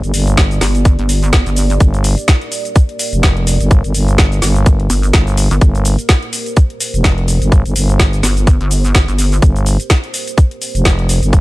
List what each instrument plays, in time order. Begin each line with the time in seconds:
Already playing: analog synth pad A#3 G4 A#4 D5
0.03 fm bass G1, closed hi-hat, cabasa
0.14 fm bass G1, open hi-hat, cabasa
0.27 closed hi-hat, cabasa
0.37 kick, snare, closed hi-hat, cabasa
0.51 closed hi-hat, cabasa
0.61 wobble bass G1, snare, open hi-hat, cabasa
0.75 closed hi-hat, cabasa
0.85 kick, closed hi-hat, cabasa
0.99 wobble bass G1, closed hi-hat
1.09 open hi-hat, cabasa
1.23 closed hi-hat, cabasa
1.33 kick, snare, closed hi-hat, cabasa
1.46 wobble bass G1, closed hi-hat, cabasa
1.56 open hi-hat, cabasa
1.70 closed hi-hat, cabasa
1.80 fm bass G1, kick, closed hi-hat, cabasa
1.94 closed hi-hat, cabasa
2.04 open hi-hat, cabasa
2.18 closed hi-hat, cabasa
2.28 kick, snare, closed hi-hat, cabasa
2.42 closed hi-hat
2.52 open hi-hat, cabasa
2.65 closed hi-hat, cabasa
2.76 kick, closed hi-hat, cabasa
2.89 closed hi-hat
2.99 open hi-hat, cabasa
3.13 fm bass F1, closed hi-hat, cabasa
3.23 kick, snare, closed hi-hat, cabasa
3.37 closed hi-hat
3.47 open hi-hat, cabasa
3.61 fm bass G1, closed hi-hat, cabasa
3.71 kick, closed hi-hat, cabasa
3.84 fm bass G1, closed hi-hat, cabasa
3.94 fm bass G1, open hi-hat, cabasa
4.08 closed hi-hat, cabasa
4.18 kick, snare, closed hi-hat, cabasa
4.32 closed hi-hat, cabasa
4.42 fm bass G1, snare, open hi-hat, cabasa
4.56 closed hi-hat, cabasa
4.66 kick, closed hi-hat, cabasa
4.80 closed hi-hat
4.90 wobble bass G1, open hi-hat, cabasa
5.03 closed hi-hat, cabasa
5.13 fm bass G1, kick, snare, closed hi-hat, cabasa
5.27 closed hi-hat, cabasa
5.37 open hi-hat, cabasa
5.51 wobble bass G1, closed hi-hat, cabasa
5.61 fm bass G1, analog synth pad C5, kick, closed hi-hat, cabasa
5.75 closed hi-hat, cabasa
5.85 open hi-hat, cabasa
5.99 closed hi-hat, cabasa
6.09 kick, snare, closed hi-hat, cabasa
6.23 closed hi-hat
6.33 open hi-hat, cabasa
6.46 closed hi-hat, cabasa
6.57 kick, closed hi-hat, cabasa
6.70 closed hi-hat
6.80 open hi-hat, cabasa
6.94 fm bass F1, closed hi-hat, cabasa
7.04 kick, snare, closed hi-hat, cabasa
7.18 closed hi-hat
7.28 open hi-hat, cabasa
7.42 fm bass G1, closed hi-hat, cabasa
7.52 kick, closed hi-hat, cabasa
7.66 fm bass G1, closed hi-hat, cabasa
7.76 fm bass G1, open hi-hat, cabasa
7.89 closed hi-hat, cabasa
8.00 kick, snare, closed hi-hat, cabasa
8.13 closed hi-hat, cabasa
8.23 wobble bass G1, snare, open hi-hat, cabasa
8.37 closed hi-hat, cabasa
8.47 kick, closed hi-hat, cabasa
8.61 wobble bass G1, closed hi-hat
8.71 open hi-hat, cabasa
8.84 closed hi-hat, cabasa
8.95 kick, snare, closed hi-hat, cabasa
9.08 wobble bass G1, closed hi-hat, cabasa
9.19 open hi-hat, cabasa
9.32 closed hi-hat, cabasa
9.42 fm bass G1, kick, closed hi-hat, cabasa
9.56 closed hi-hat, cabasa
9.66 open hi-hat, cabasa
9.80 closed hi-hat, cabasa
9.90 kick, snare, closed hi-hat, cabasa
10.04 closed hi-hat
10.14 open hi-hat, cabasa
10.27 closed hi-hat, cabasa
10.38 kick, closed hi-hat, cabasa
10.51 closed hi-hat
10.62 open hi-hat, cabasa
10.75 fm bass F1, closed hi-hat, cabasa
10.85 kick, snare, closed hi-hat, cabasa
10.99 closed hi-hat
11.09 open hi-hat, cabasa
11.23 fm bass G1, closed hi-hat, cabasa
11.33 kick, closed hi-hat, cabasa